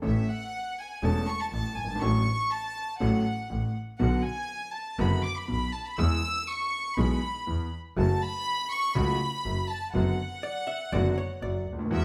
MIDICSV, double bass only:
0, 0, Header, 1, 2, 480
1, 0, Start_track
1, 0, Key_signature, 3, "major"
1, 0, Tempo, 495050
1, 34, Time_signature, 4, 2, 24, 8
1, 11681, End_track
2, 0, Start_track
2, 0, Title_t, "Double bass"
2, 0, Program_c, 0, 43
2, 44, Note_on_c, 0, 33, 83
2, 243, Note_off_c, 0, 33, 0
2, 1001, Note_on_c, 0, 28, 80
2, 1204, Note_off_c, 0, 28, 0
2, 1478, Note_on_c, 0, 33, 54
2, 1682, Note_off_c, 0, 33, 0
2, 1719, Note_on_c, 0, 31, 52
2, 1954, Note_off_c, 0, 31, 0
2, 1960, Note_on_c, 0, 33, 86
2, 2164, Note_off_c, 0, 33, 0
2, 2925, Note_on_c, 0, 33, 79
2, 3126, Note_off_c, 0, 33, 0
2, 3408, Note_on_c, 0, 33, 56
2, 3607, Note_off_c, 0, 33, 0
2, 3889, Note_on_c, 0, 35, 86
2, 4087, Note_off_c, 0, 35, 0
2, 4839, Note_on_c, 0, 30, 87
2, 5042, Note_off_c, 0, 30, 0
2, 5326, Note_on_c, 0, 35, 57
2, 5525, Note_off_c, 0, 35, 0
2, 5803, Note_on_c, 0, 40, 87
2, 6003, Note_off_c, 0, 40, 0
2, 6765, Note_on_c, 0, 35, 85
2, 6965, Note_off_c, 0, 35, 0
2, 7250, Note_on_c, 0, 40, 52
2, 7449, Note_off_c, 0, 40, 0
2, 7729, Note_on_c, 0, 30, 87
2, 7929, Note_off_c, 0, 30, 0
2, 8694, Note_on_c, 0, 37, 83
2, 8890, Note_off_c, 0, 37, 0
2, 9168, Note_on_c, 0, 30, 57
2, 9367, Note_off_c, 0, 30, 0
2, 9645, Note_on_c, 0, 30, 86
2, 9844, Note_off_c, 0, 30, 0
2, 10595, Note_on_c, 0, 30, 94
2, 10797, Note_off_c, 0, 30, 0
2, 11075, Note_on_c, 0, 30, 53
2, 11275, Note_off_c, 0, 30, 0
2, 11315, Note_on_c, 0, 38, 57
2, 11545, Note_off_c, 0, 38, 0
2, 11551, Note_on_c, 0, 40, 86
2, 11681, Note_off_c, 0, 40, 0
2, 11681, End_track
0, 0, End_of_file